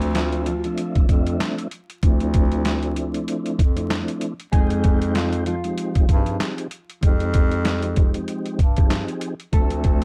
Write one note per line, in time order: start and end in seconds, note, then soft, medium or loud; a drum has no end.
0.00 0.74 D2 loud
0.00 0.54 F3 loud
0.00 0.12 A3 medium
0.00 0.54 A3 medium
0.00 0.54 C4 medium
0.00 0.54 D4 medium
0.00 0.12 A4 loud
0.00 0.55 E5 loud
0.00 closed hi-hat medium
0.15 0.44 F3 medium
0.15 0.44 F4 medium
0.15 snare loud
0.15 clap loud
0.15 closed hi-hat loud
0.32 closed hi-hat medium
0.46 1.37 F3 medium
0.46 1.37 F4 medium
0.46 closed hi-hat medium
0.64 1.06 F3 loud
0.64 1.06 A3 medium
0.64 1.06 C4 medium
0.64 1.06 D4 medium
0.64 1.06 E5 loud
0.64 closed hi-hat medium
0.78 closed hi-hat medium
0.95 kick medium
0.95 closed hi-hat medium
1.09 1.37 F2 medium
1.09 1.67 F3 medium
1.09 1.67 A3 loud
1.09 1.67 C4 medium
1.09 1.67 D4 medium
1.09 1.68 E5 loud
1.09 kick loud
1.09 closed hi-hat medium
1.27 closed hi-hat medium
1.40 snare loud
1.40 clap loud
1.40 closed hi-hat medium
1.58 closed hi-hat medium
1.71 closed hi-hat medium
1.90 closed hi-hat medium
2.03 3.24 D2 loud
2.03 3.62 F3 medium
2.03 3.62 A3 medium
2.03 3.62 C4 medium
2.03 3.62 D4 medium
2.03 3.62 E4 loud
2.03 kick loud
2.03 closed hi-hat medium
2.20 closed hi-hat medium
2.34 kick loud
2.34 closed hi-hat medium
2.52 closed hi-hat medium
2.65 snare loud
2.65 clap medium
2.65 closed hi-hat medium
2.83 closed hi-hat medium
2.96 closed hi-hat medium
3.14 closed hi-hat medium
3.28 closed hi-hat medium
3.46 closed hi-hat medium
3.59 4.03 F2 medium
3.59 kick loud
3.59 closed hi-hat medium
3.76 4.33 F3 medium
3.76 4.33 A3 medium
3.76 4.33 C4 medium
3.76 4.34 D4 medium
3.76 4.34 E4 loud
3.76 closed hi-hat medium
3.90 snare loud
3.90 clap loud
3.90 closed hi-hat medium
4.08 closed hi-hat medium
4.21 closed hi-hat medium
4.40 closed hi-hat medium
4.52 5.74 F2 loud
4.52 5.55 F3 loud
4.52 5.12 G#3 medium
4.52 5.55 G#3 medium
4.52 5.55 C4 medium
4.52 5.55 D#4 medium
4.52 5.11 G#4 loud
4.52 5.55 G5 loud
4.52 kick loud
4.52 closed hi-hat medium
4.70 closed hi-hat medium
4.84 kick loud
4.84 closed hi-hat medium
5.02 closed hi-hat medium
5.15 5.44 F3 medium
5.15 5.44 F4 medium
5.15 snare loud
5.15 clap loud
5.15 closed hi-hat medium
5.32 closed hi-hat medium
5.46 6.37 F3 medium
5.46 6.37 F4 medium
5.46 closed hi-hat medium
5.64 6.06 F3 medium
5.64 6.06 G#3 medium
5.64 6.06 C4 medium
5.64 6.06 D#4 medium
5.64 6.06 G4 loud
5.64 closed hi-hat medium
5.78 closed hi-hat medium
5.95 kick medium
5.95 closed hi-hat medium
6.09 6.37 G2 loud
6.09 6.67 F3 loud
6.09 6.67 C4 medium
6.09 6.68 D#4 medium
6.09 6.68 G4 loud
6.09 6.67 G#4 medium
6.09 kick loud
6.09 closed hi-hat medium
6.26 closed hi-hat medium
6.40 snare loud
6.40 clap loud
6.40 closed hi-hat medium
6.58 closed hi-hat medium
6.71 closed hi-hat medium
6.90 closed hi-hat medium
7.01 8.24 F2 loud
7.01 8.60 F3 loud
7.01 8.60 G#3 medium
7.01 8.61 C4 medium
7.01 8.61 D#4 medium
7.01 8.61 G4 loud
7.01 kick loud
7.01 closed hi-hat medium
7.20 closed hi-hat medium
7.34 kick loud
7.34 closed hi-hat medium
7.51 closed hi-hat medium
7.65 snare loud
7.65 clap loud
7.65 closed hi-hat loud
7.82 closed hi-hat medium
7.96 kick loud
7.96 closed hi-hat medium
8.14 closed hi-hat medium
8.28 closed hi-hat medium
8.46 closed hi-hat medium
8.59 9.03 G2 medium
8.59 kick loud
8.59 closed hi-hat medium
8.76 9.34 F3 medium
8.76 9.34 C4 medium
8.76 9.34 D#4 medium
8.76 9.34 G4 loud
8.76 9.34 G#4 medium
8.76 kick loud
8.76 closed hi-hat medium
8.90 snare loud
8.90 clap loud
8.90 closed hi-hat medium
9.08 closed hi-hat medium
9.21 closed hi-hat medium
9.40 closed hi-hat medium
9.52 10.04 D2 loud
9.52 10.04 F3 loud
9.52 10.04 A3 medium
9.52 10.04 C4 medium
9.52 10.04 D4 medium
9.52 10.04 A4 medium
9.52 10.04 E5 loud
9.52 kick loud
9.52 closed hi-hat medium
9.70 closed hi-hat medium
9.84 kick loud
9.84 closed hi-hat medium